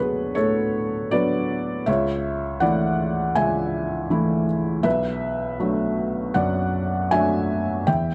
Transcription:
0.00 1.90 D2 soft
0.00 0.33 F#3 soft
0.00 0.33 B3 soft
0.00 0.33 D4 soft
0.00 0.34 G#4 soft
0.00 0.36 A4 soft
0.00 0.36 B4 soft
0.00 0.35 C#5 medium
0.35 1.10 A2 soft
0.35 1.08 A4 soft
0.35 1.12 C#5 medium
1.11 1.83 F#3 soft
1.11 1.84 B3 soft
1.11 1.84 D4 soft
1.11 1.84 B4 soft
1.11 1.87 D5 medium
1.86 2.59 C#2 soft
1.86 2.58 C#5 medium
1.86 2.61 E5 medium
2.60 3.32 E3 soft
2.60 3.32 A3 soft
2.60 3.32 E4 soft
2.60 3.32 D5 medium
2.60 3.35 F#5 medium
3.35 4.08 C#2 soft
3.35 4.44 E5 medium
3.35 4.47 G#5 medium
4.10 4.81 E3 soft
4.10 4.81 A3 soft
4.10 4.81 E4 soft
4.83 5.57 B1 soft
4.83 6.31 B4 medium
4.83 6.34 E5 medium
5.60 6.31 F#3 soft
5.60 6.31 A3 soft
5.60 6.32 D4 soft
6.34 7.09 F#2 soft
6.34 7.07 D5 soft
6.34 7.11 F#5 medium
7.11 7.84 F#3 soft
7.11 7.84 A3 soft
7.11 7.84 D4 soft
7.11 7.84 E5 medium
7.11 7.87 G#5 medium
7.87 8.14 E2 soft
7.87 8.14 E5 medium
7.87 8.14 G5 medium

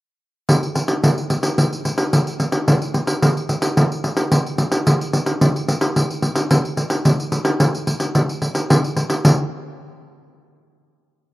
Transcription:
0.49 pandeiro medium
0.63 pandeiro soft
0.75 pandeiro medium
0.88 pandeiro medium
1.04 pandeiro medium
1.18 pandeiro soft
1.30 pandeiro medium
1.43 pandeiro medium
1.58 pandeiro medium
1.73 pandeiro soft
1.85 pandeiro medium
1.98 pandeiro medium
2.13 pandeiro medium
2.27 pandeiro soft
2.40 pandeiro medium
2.52 pandeiro medium
2.68 pandeiro medium
2.82 pandeiro soft
2.94 pandeiro medium
3.07 pandeiro medium
3.22 pandeiro medium
3.37 pandeiro soft
3.49 pandeiro medium
3.62 pandeiro medium
3.77 pandeiro medium
3.92 pandeiro soft
4.04 pandeiro medium
4.17 pandeiro medium
4.32 pandeiro medium
4.46 pandeiro soft
4.58 pandeiro medium
4.72 pandeiro medium
4.87 pandeiro medium
5.01 pandeiro soft
5.13 pandeiro medium
5.26 pandeiro medium
5.41 pandeiro medium
5.56 pandeiro soft
5.68 pandeiro medium
5.81 pandeiro medium
5.96 pandeiro medium
6.11 pandeiro soft
6.22 pandeiro medium
6.36 pandeiro medium
6.51 pandeiro medium
6.65 pandeiro soft
6.77 pandeiro medium
6.90 pandeiro medium
7.05 pandeiro medium
7.20 pandeiro soft
7.32 pandeiro medium
7.45 pandeiro medium
7.60 pandeiro medium
7.75 pandeiro soft
7.87 pandeiro medium
8.00 pandeiro medium
8.15 pandeiro medium
8.29 pandeiro soft
8.42 pandeiro medium
8.55 pandeiro medium
8.70 pandeiro medium
8.84 pandeiro soft
8.97 pandeiro medium
9.10 pandeiro medium
9.25 pandeiro medium

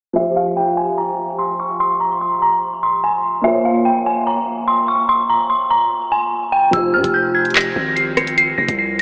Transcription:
0.13 3.39 F3 medium
0.13 3.40 F4 medium
0.13 3.41 G4 medium
0.13 0.33 E5 medium
0.18 3.42 C5 medium
0.36 0.54 F5 medium
0.57 0.74 G5 medium
0.77 0.95 G#5 medium
0.98 1.36 A#5 medium
1.39 1.56 C6 medium
1.60 1.77 C#6 medium
1.80 1.97 C6 loud
2.00 2.18 A#5 medium
2.21 2.39 C6 medium
2.42 2.81 A#5 medium
2.83 3.00 C6 medium
3.04 3.21 G#5 medium
3.41 6.68 A#3 medium
3.41 6.69 F4 medium
3.41 6.69 C5 medium
3.41 3.62 E5 loud
3.46 6.70 C#5 medium
3.65 3.82 F5 medium
3.85 4.03 G5 medium
4.06 4.24 G#5 medium
4.27 4.65 A#5 medium
4.68 4.85 C6 medium
4.88 5.06 C#6 medium
5.09 5.26 C6 loud
5.30 5.47 A#5 medium
5.50 5.67 C6 medium
5.71 6.09 A#5 medium
6.12 6.50 G#5 medium
6.52 6.70 G5 medium
6.71 6.95 F1 loud
6.71 9.02 F3 medium
6.71 9.02 F4 medium
6.71 9.02 G4 medium
6.71 6.91 E6 medium
6.71 kick loud
6.71 closed hi-hat medium
6.76 9.02 C5 medium
6.94 7.04 G#2 loud
6.94 7.11 F6 medium
7.04 7.73 F1 loud
7.04 kick medium
7.04 closed hi-hat medium
7.14 7.31 G6 medium
7.35 7.52 G#6 medium
7.45 closed hi-hat soft
7.50 closed hi-hat medium
7.55 7.94 A#6 medium
7.55 clap loud
7.55 closed hi-hat medium
7.61 closed hi-hat medium
7.76 8.55 G#1 loud
7.96 8.14 C7 medium
7.96 closed hi-hat medium
8.17 8.34 C#7 medium
8.17 cross-stick loud
8.17 closed hi-hat medium
8.27 closed hi-hat medium
8.38 8.55 C7 loud
8.38 closed hi-hat medium
8.58 8.68 F1 loud
8.58 8.75 A#6 medium
8.68 9.02 C2 loud
8.68 kick medium
8.68 closed hi-hat medium
8.79 8.96 C7 medium

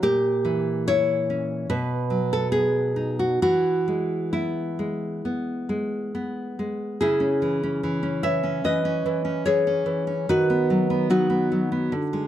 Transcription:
0.03 1.65 A#2 medium
0.03 0.84 G4 medium
0.45 1.69 E3 soft
0.88 1.70 E4 medium
0.88 1.66 C#5 loud
1.30 1.70 C#4 soft
1.70 3.37 B2 medium
1.70 2.29 B4 medium
2.10 3.41 F#3 soft
2.33 2.51 A4 medium
2.52 3.41 B3 soft
2.52 3.15 G#4 medium
2.96 3.41 D#4 soft
3.19 3.41 F#4 medium
3.42 5.21 E3 medium
3.42 4.30 F#4 medium
3.88 4.78 G#3 soft
4.33 5.24 B3 soft
4.33 6.55 E4 medium
4.79 5.68 G#3 soft
5.25 6.13 B3 soft
5.69 6.58 G#3 soft
6.15 7.01 B3 soft
6.59 7.02 G#3 soft
7.01 8.61 C#3 medium
7.01 8.20 E4 medium
7.01 8.20 G#4 medium
7.20 7.62 C#4 soft
7.42 7.82 E3 soft
7.63 8.02 C#4 soft
7.83 8.22 E3 soft
8.03 8.42 C#4 soft
8.23 8.63 E3 soft
8.23 8.62 C#5 medium
8.23 8.63 E5 medium
8.43 8.84 C#4 soft
8.64 9.04 E3 soft
8.64 9.43 B4 medium
8.64 9.43 D#5 medium
8.85 9.23 C#4 soft
9.06 9.45 E3 soft
9.25 9.66 C#4 soft
9.46 9.85 E3 soft
9.46 10.24 G#4 medium
9.46 10.25 C#5 medium
9.67 10.06 C#4 soft
9.86 10.28 E3 soft
10.07 10.28 C#4 soft
10.29 11.89 D#3 medium
10.29 11.07 F#4 medium
10.29 11.07 B4 medium
10.50 10.89 B3 soft
10.70 11.09 F#3 soft
10.90 11.29 B3 soft
11.10 11.50 F#3 medium
11.10 12.27 D#4 medium
11.10 12.27 F#4 medium
11.30 11.71 B3 soft
11.52 11.93 F#3 soft
11.72 11.93 B3 soft
11.92 12.27 D3 medium
12.13 12.27 G#3 soft

